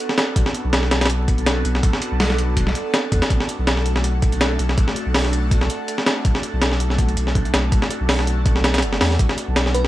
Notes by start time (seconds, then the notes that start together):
0.09 snare
0.18 snare, closed hi-hat
0.36 B1 B3 D4 F#4 A4, kick, closed hi-hat
0.46 snare
0.54 closed hi-hat
0.64 B1
0.73 snare, closed hi-hat
0.83 snare
0.91 snare, closed hi-hat
1.01 snare, closed hi-hat
1.06 snare, closed hi-hat
1.10 closed hi-hat
1.28 B1, kick, closed hi-hat
1.38 closed hi-hat
1.46 snare, closed hi-hat
1.65 B1, closed hi-hat
1.75 snare
1.83 B1 B3 D4 F#4 A4, kick, closed hi-hat
1.93 snare
2.02 closed hi-hat
2.11 B1
2.20 snare, open hi-hat
2.30 snare
2.38 closed hi-hat
2.57 kick, closed hi-hat
2.67 snare
2.75 closed hi-hat
2.94 snare, closed hi-hat
3.12 E2, kick, closed hi-hat
3.22 snare, closed hi-hat
3.30 B1 A3 D4 F#4 A4, kick, closed hi-hat
3.40 snare
3.49 closed hi-hat
3.59 B1
3.67 snare, closed hi-hat
3.77 snare
3.86 closed hi-hat
3.96 snare
4.04 closed hi-hat
4.22 B1, kick, closed hi-hat
4.32 closed hi-hat
4.41 snare, closed hi-hat
4.59 B1, closed hi-hat
4.69 snare
4.78 B1 A3 D4 F#4 A4, kick, closed hi-hat
4.88 snare
4.96 closed hi-hat
5.06 B1
5.14 snare, open hi-hat
5.25 snare
5.33 closed hi-hat
5.51 kick, closed hi-hat
5.61 snare
5.70 closed hi-hat
5.88 closed hi-hat
5.98 snare
6.06 snare, closed hi-hat
6.25 B1 A3 D4 F#4 A4, kick, closed hi-hat
6.35 snare
6.43 closed hi-hat
6.53 B1
6.62 snare, closed hi-hat
6.72 snare
6.80 closed hi-hat
6.90 snare
6.98 kick, closed hi-hat
7.09 closed hi-hat
7.17 B1, closed hi-hat
7.27 snare
7.35 kick, closed hi-hat
7.45 closed hi-hat
7.54 B1, snare, closed hi-hat
7.72 B1 A3 D4 F#4 A4, kick, closed hi-hat
7.82 snare
7.91 closed hi-hat
8.01 B1
8.09 snare, open hi-hat
8.19 snare
8.27 closed hi-hat
8.46 kick, closed hi-hat
8.56 snare
8.64 snare, closed hi-hat
8.74 snare, closed hi-hat
8.78 snare, closed hi-hat
8.82 F#1, closed hi-hat
8.93 snare
9.01 E2, snare, open hi-hat
9.11 snare
9.19 B1 B3 D4 F#4 A4, kick, closed hi-hat
9.29 snare
9.38 closed hi-hat
9.48 B1
9.56 snare, closed hi-hat
9.66 snare
9.74 B4, closed hi-hat
9.85 snare